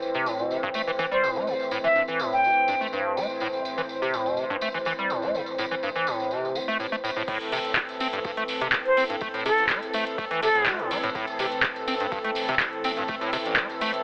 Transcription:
Already playing: A2 E3 C4 C5
0.02 tambourine
0.14 C3, tambourine
0.26 A2, tambourine
0.39 B2, tambourine
0.51 C3, tambourine
0.63 G2
0.74 A3, tambourine
0.87 E3, tambourine
0.99 E3, tambourine
1.11 G3 C5
1.23 A2, tambourine
1.36 A3, tambourine
1.47 C3, tambourine
1.60 tambourine
1.71 A2, tambourine
1.84 E3 E5, tambourine
1.96 G2, tambourine
2.08 E3, tambourine
2.20 A2, tambourine
2.33 G5, tambourine
2.44 C3, tambourine
2.68 G2, tambourine
2.81 A3, tambourine
2.93 G2, tambourine
3.17 A3, tambourine
3.30 tambourine
3.40 A2, tambourine
3.53 tambourine
3.65 tambourine
3.78 E3, tambourine
3.89 tambourine
4.02 C3, tambourine
4.14 A2, tambourine
4.26 B2, tambourine
4.37 C3, tambourine
4.50 G2
4.61 A3, tambourine
4.74 E3, tambourine
4.85 E3, tambourine
4.99 G3
5.10 A2, tambourine
5.22 A3, tambourine
5.35 C3, tambourine
5.46 tambourine
5.58 A2, tambourine
5.71 E3, tambourine
5.83 G2, tambourine
5.95 E3, tambourine
6.07 A2, tambourine
6.20 tambourine
6.31 C3, tambourine
6.45 tambourine
6.55 E3, tambourine
6.68 A3, tambourine
6.80 A2, tambourine
6.92 A3, tambourine
7.04 A2, tambourine
7.16 A2, tambourine
7.28 A2 E3 C4 A4, kick, crash, ride, tambourine
7.41 closed hi-hat, tambourine
7.52 C3, open hi-hat, ride, tambourine
7.65 closed hi-hat, tambourine
7.76 kick, clap, ride, tambourine
7.89 closed hi-hat, tambourine
8.00 C4, open hi-hat, ride, tambourine
8.13 G2, closed hi-hat, tambourine
8.24 G2, kick, ride, tambourine
8.37 A3, closed hi-hat
8.48 open hi-hat, ride, tambourine
8.61 C3, closed hi-hat, tambourine
8.73 kick, clap, ride, tambourine
8.86 C5, closed hi-hat
8.97 C4, open hi-hat, ride, tambourine
9.09 G2, closed hi-hat, tambourine
9.21 A3, kick, ride, tambourine
9.34 A2, closed hi-hat, tambourine
9.46 C3 A4, open hi-hat, ride, tambourine
9.58 A1, closed hi-hat, tambourine
9.69 A3, kick, clap, ride, tambourine
9.82 closed hi-hat, tambourine
9.93 A3, open hi-hat, ride, tambourine
10.06 closed hi-hat, tambourine
10.18 A3, kick, ride, tambourine
10.31 E3, closed hi-hat
10.42 C3 A4, open hi-hat, ride, tambourine
10.55 A2, closed hi-hat, tambourine
10.66 A3, kick, clap, ride, tambourine
10.79 A2, closed hi-hat
10.91 A3, open hi-hat, ride, tambourine
11.03 A2, closed hi-hat, tambourine
11.15 A2, kick, ride, tambourine
11.27 closed hi-hat, tambourine
11.39 C3, open hi-hat, ride, tambourine
11.52 closed hi-hat, tambourine
11.63 kick, clap, ride
11.76 closed hi-hat, tambourine
11.88 C4, open hi-hat, ride, tambourine
12.00 G2, closed hi-hat, tambourine
12.12 G2, kick, ride, tambourine
12.24 A3, closed hi-hat
12.35 open hi-hat, ride, tambourine
12.49 C3, closed hi-hat, tambourine
12.60 kick, clap, ride, tambourine
12.73 closed hi-hat
12.84 C4, open hi-hat, ride, tambourine
12.97 G2, closed hi-hat, tambourine
13.08 A3, kick, ride, tambourine
13.21 A2, closed hi-hat, tambourine
13.33 C3, open hi-hat, ride, tambourine
13.45 A1, closed hi-hat, tambourine
13.56 A3, kick, clap, ride, tambourine
13.70 closed hi-hat, tambourine
13.81 A3, open hi-hat, ride, tambourine
13.93 closed hi-hat, tambourine

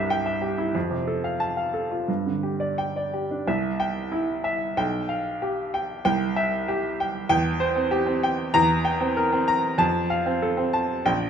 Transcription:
Already playing: C2 G2 G4 E5
0.10 G5
0.26 E5
0.41 G4
0.58 E4
0.75 F2
0.91 C3
1.07 A4
1.24 F5
1.40 A5
1.57 F5
1.74 A4
1.91 F4
2.08 G2
2.26 D3
2.43 G4
2.60 D5
2.78 G5
2.96 D5
3.14 G4
3.31 D4
3.48 C2 E5
3.80 G5
4.12 E4
4.44 E5
4.77 B1 G5
5.09 F5
5.42 G4
5.74 G5
6.05 C2 G5
6.36 E5
6.68 G4
7.00 G5
7.29 E2 G5
7.60 C5
7.76 C4
7.91 G4
8.06 C4
8.23 G5
8.54 E2 A#5
8.85 G5
9.01 C4
9.17 A#4
9.32 C4
9.48 A#5
9.78 F2 A5
10.10 F5
10.26 C4
10.42 A4
10.57 C4
10.73 A5
11.06 A#1 G5

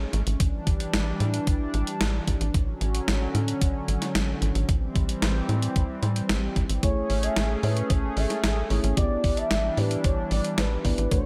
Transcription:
Already playing: G#3 A3 C#4
0.13 A1, closed hi-hat
0.27 A1, closed hi-hat
0.40 A1 E3 G3 D4, kick, closed hi-hat
0.67 A1, kick, closed hi-hat
0.80 closed hi-hat
0.93 A1, snare, closed hi-hat
1.20 A2, closed hi-hat
1.34 closed hi-hat
1.47 A1, kick, closed hi-hat
1.74 A1, closed hi-hat
1.87 closed hi-hat
2.01 A1, snare, closed hi-hat
2.28 A1, kick, closed hi-hat
2.41 A1, closed hi-hat
2.54 A1 D3 F#3 C#4, kick, closed hi-hat
2.81 A1, closed hi-hat
2.95 closed hi-hat
3.08 A1, snare, closed hi-hat
3.35 A2, closed hi-hat
3.48 closed hi-hat
3.61 A1, kick, closed hi-hat
3.88 A1, closed hi-hat
4.02 snare, closed hi-hat
4.15 A1, snare, closed hi-hat
4.42 A1, closed hi-hat
4.55 A1, closed hi-hat
4.69 A1 E3 G3 C4, kick, closed hi-hat
4.95 A1, kick, closed hi-hat
5.09 closed hi-hat
5.22 A1, snare, closed hi-hat
5.49 A2, closed hi-hat
5.62 closed hi-hat
5.76 A1, kick, closed hi-hat
6.03 A2, closed hi-hat
6.16 closed hi-hat
6.29 A1, snare, closed hi-hat
6.56 A1, kick, closed hi-hat
6.70 A1, closed hi-hat
6.83 A1 A3 C#4 E4 G#4 C#5, kick, closed hi-hat
7.10 A1, open hi-hat
7.23 E5, closed hi-hat
7.36 A1, snare, closed hi-hat
7.63 A2 A3 E4 G#4 B4 C#5, open hi-hat
7.77 closed hi-hat
7.90 A1 C#5, kick, closed hi-hat
8.17 A1 E5, open hi-hat
8.30 snare, closed hi-hat
8.44 A1, snare, closed hi-hat
8.70 A1 A3 E4 G#4 C#5, open hi-hat
8.84 A1, closed hi-hat
8.97 A1 E3 G3 B3 D4 E4 G4 D5, kick, closed hi-hat
9.24 A1, kick, open hi-hat
9.37 E5, closed hi-hat
9.51 A1, snare, closed hi-hat
9.77 A2 B3 E4 G4 B4 D5, open hi-hat
9.91 closed hi-hat
10.04 A1 C#5, kick, closed hi-hat
10.31 A1 D5, open hi-hat
10.44 closed hi-hat
10.58 A1 B4, snare, closed hi-hat
10.85 A1 B3 E4 G4 D5, kick, open hi-hat
10.98 A1, closed hi-hat
11.11 A1 D3 F#3 A3 D4 F#4 C#5, kick, closed hi-hat

